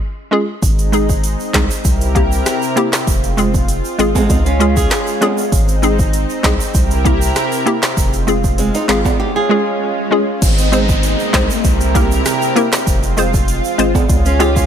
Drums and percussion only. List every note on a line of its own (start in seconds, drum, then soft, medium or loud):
0.62 kick loud
0.62 closed hi-hat medium
0.62 shaker medium
0.79 closed hi-hat soft
0.79 shaker soft
0.93 closed hi-hat medium
0.93 shaker medium
1.09 kick medium
1.09 shaker medium
1.24 closed hi-hat medium
1.24 shaker medium
1.40 shaker medium
1.54 kick loud
1.54 snare loud
1.54 clap loud
1.54 closed hi-hat medium
1.54 shaker soft
1.71 shaker medium
1.85 kick medium
1.85 closed hi-hat medium
1.85 shaker medium
2.01 closed hi-hat medium
2.01 shaker medium
2.16 kick medium
2.16 closed hi-hat medium
2.32 shaker medium
2.46 cross-stick medium
2.46 snare medium
2.46 closed hi-hat medium
2.46 shaker medium
2.62 shaker medium
2.77 closed hi-hat medium
2.93 snare loud
2.93 clap medium
2.93 shaker medium
3.07 kick loud
3.07 closed hi-hat medium
3.07 shaker medium
3.24 closed hi-hat medium
3.24 shaker soft
3.38 closed hi-hat medium
3.38 shaker medium
3.54 kick medium
3.54 shaker medium
3.68 closed hi-hat medium
3.68 shaker medium
3.85 shaker medium
3.99 closed hi-hat medium
3.99 shaker soft
4.15 kick medium
4.15 high timbale medium
4.15 shaker medium
4.30 kick loud
4.30 closed hi-hat medium
4.30 shaker medium
4.46 closed hi-hat medium
4.46 shaker medium
4.60 closed hi-hat medium
4.77 kick medium
4.77 shaker medium
4.91 cross-stick medium
4.91 snare loud
4.91 clap medium
4.91 closed hi-hat medium
4.91 shaker medium
5.07 shaker medium
5.22 closed hi-hat medium
5.22 high timbale medium
5.38 shaker medium
5.52 kick loud
5.52 closed hi-hat medium
5.52 shaker medium
5.68 closed hi-hat medium
5.68 shaker medium
5.83 closed hi-hat medium
5.83 shaker medium
5.99 kick medium
5.99 shaker medium
6.13 closed hi-hat medium
6.13 shaker medium
6.30 shaker soft
6.44 kick loud
6.44 snare loud
6.44 clap loud
6.44 closed hi-hat medium
6.44 shaker soft
6.60 shaker medium
6.74 kick loud
6.74 closed hi-hat medium
6.74 shaker medium
6.91 closed hi-hat medium
6.91 shaker medium
7.05 kick medium
7.05 closed hi-hat medium
7.22 shaker medium
7.36 cross-stick medium
7.36 snare medium
7.36 closed hi-hat medium
7.36 shaker medium
7.52 shaker medium
7.67 closed hi-hat medium
7.83 snare loud
7.83 clap medium
7.83 shaker medium
7.97 kick loud
7.97 closed hi-hat medium
7.97 shaker medium
8.13 closed hi-hat medium
8.13 shaker soft
8.28 closed hi-hat medium
8.28 shaker medium
8.44 kick medium
8.44 shaker medium
8.58 closed hi-hat medium
8.58 shaker medium
8.75 closed hi-hat medium
8.75 shaker medium
8.89 snare loud
8.89 clap loud
8.89 closed hi-hat medium
8.89 shaker soft
9.05 kick medium
9.05 high timbale medium
9.05 shaker medium
10.42 kick loud
10.42 closed hi-hat medium
10.42 crash loud
10.42 shaker medium
10.58 closed hi-hat medium
10.58 shaker medium
10.72 closed hi-hat medium
10.72 shaker medium
10.89 kick medium
10.89 shaker medium
11.03 closed hi-hat medium
11.03 shaker medium
11.19 shaker medium
11.34 kick loud
11.34 snare loud
11.34 clap loud
11.34 closed hi-hat medium
11.34 shaker soft
11.50 shaker medium
11.64 kick medium
11.64 closed hi-hat medium
11.64 shaker medium
11.81 closed hi-hat medium
11.81 shaker medium
11.95 kick medium
11.95 closed hi-hat medium
11.95 shaker medium
12.12 shaker medium
12.26 cross-stick medium
12.26 snare medium
12.26 closed hi-hat medium
12.26 shaker medium
12.42 shaker medium
12.56 closed hi-hat medium
12.56 shaker soft
12.72 snare loud
12.72 clap loud
12.72 shaker medium
12.87 kick loud
12.87 closed hi-hat medium
12.87 shaker medium
13.03 closed hi-hat medium
13.03 shaker soft
13.18 closed hi-hat medium
13.18 shaker medium
13.34 kick medium
13.34 shaker medium
13.48 closed hi-hat medium
13.48 shaker medium
13.64 shaker medium
13.79 closed hi-hat medium
13.79 shaker soft
13.95 kick medium
13.95 high timbale medium
13.95 shaker medium
14.09 kick loud
14.09 closed hi-hat medium
14.09 shaker medium
14.26 closed hi-hat medium
14.26 shaker medium
14.40 closed hi-hat medium
14.40 shaker medium
14.56 kick medium
14.56 shaker medium